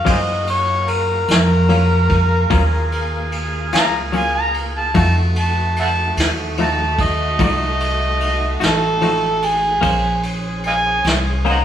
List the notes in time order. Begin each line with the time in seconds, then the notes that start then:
Already playing: F#4
0.05 F#2 F#3 A#3 C#4 F4 G#4 F5, kick, ride
0.10 G#4 C5 D#5
0.47 C#5, ride
0.88 A#4, ride
1.28 F2, snare, ride
1.69 F#3 A#3 C#4 F4, ride
2.10 kick, ride
2.50 D#2 F#3 A#3 C#4 F4 G#4, kick, ride
2.92 ride
3.32 ride
3.72 C#2 A#3 C#4 F4 A#5, snare, ride
4.12 F#3 A#3 C#4 F4, ride
4.17 G#5
4.35 A#5
4.54 ride
4.77 A5
4.94 F2 F3 A3 D#4 F#4 A5, kick, ride
5.36 ride
5.40 A5
5.76 E5 F#5 A5, ride
6.17 D#2, snare, ride
6.57 F3 A3 D#4, ride
6.61 F#4 A5
6.98 kick, ride
7.03 D#5
7.39 C2 F3 A3 D#4 F#4, kick, ride
7.44 D#5
7.80 ride
8.20 ride
8.60 A1 A3 D#4 F#4, snare, ride
8.66 A4
9.01 F3 A3 D#4 F#4, ride
9.42 G#4, ride
9.81 A#1 A#3 C#4 G#4 C5, kick, ride
9.86 C#4 G#4
10.23 ride
10.63 D#5 F5 G#5, ride
11.04 C2, snare, ride
11.45 A#3 C#4 G#4 C5, ride
11.50 D#5 F#5 A#5